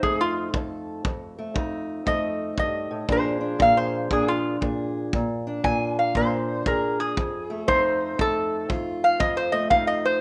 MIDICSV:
0, 0, Header, 1, 4, 480
1, 0, Start_track
1, 0, Tempo, 509338
1, 989, Time_signature, 4, 2, 24, 8
1, 9621, End_track
2, 0, Start_track
2, 0, Title_t, "Resonator guitar played with a steel bar"
2, 0, Program_c, 0, 25
2, 28, Note_on_c, 0, 68, 87
2, 183, Note_off_c, 0, 68, 0
2, 195, Note_on_c, 0, 65, 99
2, 447, Note_off_c, 0, 65, 0
2, 1954, Note_on_c, 0, 75, 99
2, 2418, Note_off_c, 0, 75, 0
2, 2445, Note_on_c, 0, 75, 88
2, 2904, Note_off_c, 0, 75, 0
2, 2940, Note_on_c, 0, 72, 88
2, 3393, Note_off_c, 0, 72, 0
2, 3412, Note_on_c, 0, 77, 92
2, 3555, Note_on_c, 0, 72, 91
2, 3558, Note_off_c, 0, 77, 0
2, 3865, Note_off_c, 0, 72, 0
2, 3888, Note_on_c, 0, 68, 86
2, 4036, Note_off_c, 0, 68, 0
2, 4037, Note_on_c, 0, 65, 99
2, 4290, Note_off_c, 0, 65, 0
2, 5319, Note_on_c, 0, 80, 97
2, 5616, Note_off_c, 0, 80, 0
2, 5643, Note_on_c, 0, 77, 85
2, 5802, Note_off_c, 0, 77, 0
2, 5811, Note_on_c, 0, 72, 97
2, 6270, Note_off_c, 0, 72, 0
2, 6288, Note_on_c, 0, 70, 91
2, 6580, Note_off_c, 0, 70, 0
2, 6596, Note_on_c, 0, 68, 90
2, 7223, Note_off_c, 0, 68, 0
2, 7236, Note_on_c, 0, 72, 106
2, 7702, Note_off_c, 0, 72, 0
2, 7738, Note_on_c, 0, 69, 105
2, 8192, Note_off_c, 0, 69, 0
2, 8519, Note_on_c, 0, 77, 93
2, 8668, Note_on_c, 0, 75, 91
2, 8672, Note_off_c, 0, 77, 0
2, 8826, Note_off_c, 0, 75, 0
2, 8830, Note_on_c, 0, 72, 88
2, 8974, Note_on_c, 0, 75, 96
2, 8986, Note_off_c, 0, 72, 0
2, 9138, Note_off_c, 0, 75, 0
2, 9144, Note_on_c, 0, 77, 98
2, 9301, Note_off_c, 0, 77, 0
2, 9305, Note_on_c, 0, 75, 92
2, 9463, Note_off_c, 0, 75, 0
2, 9475, Note_on_c, 0, 72, 92
2, 9621, Note_off_c, 0, 72, 0
2, 9621, End_track
3, 0, Start_track
3, 0, Title_t, "Steel-string acoustic guitar"
3, 0, Program_c, 1, 25
3, 0, Note_on_c, 1, 63, 63
3, 29, Note_on_c, 1, 41, 68
3, 35, Note_on_c, 1, 57, 54
3, 493, Note_off_c, 1, 41, 0
3, 504, Note_on_c, 1, 41, 66
3, 510, Note_on_c, 1, 69, 58
3, 969, Note_off_c, 1, 69, 0
3, 975, Note_off_c, 1, 63, 0
3, 977, Note_off_c, 1, 41, 0
3, 988, Note_on_c, 1, 41, 72
3, 1294, Note_off_c, 1, 57, 0
3, 1305, Note_on_c, 1, 57, 56
3, 1442, Note_off_c, 1, 41, 0
3, 1454, Note_on_c, 1, 41, 77
3, 1463, Note_on_c, 1, 63, 57
3, 1927, Note_off_c, 1, 41, 0
3, 1932, Note_off_c, 1, 57, 0
3, 1939, Note_on_c, 1, 41, 67
3, 1944, Note_on_c, 1, 57, 61
3, 2420, Note_off_c, 1, 41, 0
3, 2424, Note_on_c, 1, 43, 60
3, 2735, Note_off_c, 1, 43, 0
3, 2740, Note_on_c, 1, 45, 66
3, 2887, Note_off_c, 1, 63, 0
3, 2901, Note_off_c, 1, 45, 0
3, 2905, Note_on_c, 1, 46, 65
3, 2908, Note_off_c, 1, 57, 0
3, 2910, Note_on_c, 1, 53, 57
3, 2917, Note_on_c, 1, 62, 58
3, 2922, Note_on_c, 1, 65, 57
3, 2930, Note_on_c, 1, 68, 62
3, 3206, Note_off_c, 1, 62, 0
3, 3210, Note_on_c, 1, 62, 57
3, 3378, Note_off_c, 1, 46, 0
3, 3381, Note_on_c, 1, 46, 74
3, 3385, Note_off_c, 1, 65, 0
3, 3388, Note_on_c, 1, 65, 59
3, 3872, Note_off_c, 1, 46, 0
3, 3875, Note_off_c, 1, 62, 0
3, 3876, Note_on_c, 1, 46, 71
3, 3879, Note_on_c, 1, 62, 59
3, 4333, Note_off_c, 1, 46, 0
3, 4336, Note_off_c, 1, 68, 0
3, 4343, Note_on_c, 1, 46, 63
3, 4349, Note_on_c, 1, 68, 61
3, 4809, Note_off_c, 1, 46, 0
3, 4811, Note_off_c, 1, 68, 0
3, 4817, Note_off_c, 1, 62, 0
3, 4841, Note_on_c, 1, 46, 72
3, 5153, Note_on_c, 1, 62, 59
3, 5300, Note_off_c, 1, 46, 0
3, 5312, Note_on_c, 1, 46, 79
3, 5320, Note_off_c, 1, 65, 0
3, 5324, Note_on_c, 1, 65, 62
3, 5794, Note_off_c, 1, 46, 0
3, 5798, Note_off_c, 1, 62, 0
3, 5806, Note_on_c, 1, 46, 76
3, 5811, Note_on_c, 1, 62, 65
3, 6268, Note_off_c, 1, 46, 0
3, 6278, Note_on_c, 1, 46, 67
3, 6282, Note_on_c, 1, 68, 66
3, 6737, Note_off_c, 1, 46, 0
3, 6737, Note_off_c, 1, 68, 0
3, 6743, Note_off_c, 1, 62, 0
3, 6756, Note_off_c, 1, 53, 0
3, 6761, Note_on_c, 1, 41, 69
3, 7068, Note_on_c, 1, 57, 66
3, 7229, Note_off_c, 1, 41, 0
3, 7233, Note_on_c, 1, 41, 77
3, 7234, Note_off_c, 1, 65, 0
3, 7237, Note_on_c, 1, 63, 62
3, 7708, Note_off_c, 1, 41, 0
3, 7712, Note_off_c, 1, 57, 0
3, 7712, Note_on_c, 1, 41, 71
3, 7716, Note_on_c, 1, 57, 60
3, 8175, Note_off_c, 1, 41, 0
3, 8186, Note_on_c, 1, 41, 69
3, 8195, Note_on_c, 1, 65, 60
3, 8654, Note_off_c, 1, 63, 0
3, 8657, Note_off_c, 1, 41, 0
3, 8668, Note_on_c, 1, 41, 79
3, 8967, Note_off_c, 1, 57, 0
3, 8979, Note_on_c, 1, 57, 62
3, 9138, Note_off_c, 1, 41, 0
3, 9149, Note_on_c, 1, 41, 77
3, 9153, Note_on_c, 1, 63, 64
3, 9620, Note_off_c, 1, 41, 0
3, 9621, Note_off_c, 1, 57, 0
3, 9621, Note_off_c, 1, 63, 0
3, 9621, Note_off_c, 1, 65, 0
3, 9621, End_track
4, 0, Start_track
4, 0, Title_t, "Drums"
4, 28, Note_on_c, 9, 36, 63
4, 123, Note_off_c, 9, 36, 0
4, 507, Note_on_c, 9, 36, 72
4, 601, Note_off_c, 9, 36, 0
4, 988, Note_on_c, 9, 36, 77
4, 1082, Note_off_c, 9, 36, 0
4, 1467, Note_on_c, 9, 36, 74
4, 1561, Note_off_c, 9, 36, 0
4, 1948, Note_on_c, 9, 36, 65
4, 2042, Note_off_c, 9, 36, 0
4, 2428, Note_on_c, 9, 36, 65
4, 2522, Note_off_c, 9, 36, 0
4, 2909, Note_on_c, 9, 36, 73
4, 3003, Note_off_c, 9, 36, 0
4, 3391, Note_on_c, 9, 36, 69
4, 3486, Note_off_c, 9, 36, 0
4, 3871, Note_on_c, 9, 36, 67
4, 3965, Note_off_c, 9, 36, 0
4, 4354, Note_on_c, 9, 36, 64
4, 4448, Note_off_c, 9, 36, 0
4, 4836, Note_on_c, 9, 36, 76
4, 4930, Note_off_c, 9, 36, 0
4, 5317, Note_on_c, 9, 36, 66
4, 5411, Note_off_c, 9, 36, 0
4, 5796, Note_on_c, 9, 36, 64
4, 5891, Note_off_c, 9, 36, 0
4, 6276, Note_on_c, 9, 36, 67
4, 6371, Note_off_c, 9, 36, 0
4, 6759, Note_on_c, 9, 36, 75
4, 6854, Note_off_c, 9, 36, 0
4, 7240, Note_on_c, 9, 36, 68
4, 7334, Note_off_c, 9, 36, 0
4, 7720, Note_on_c, 9, 36, 68
4, 7814, Note_off_c, 9, 36, 0
4, 8197, Note_on_c, 9, 36, 69
4, 8291, Note_off_c, 9, 36, 0
4, 8673, Note_on_c, 9, 36, 81
4, 8767, Note_off_c, 9, 36, 0
4, 9149, Note_on_c, 9, 36, 68
4, 9243, Note_off_c, 9, 36, 0
4, 9621, End_track
0, 0, End_of_file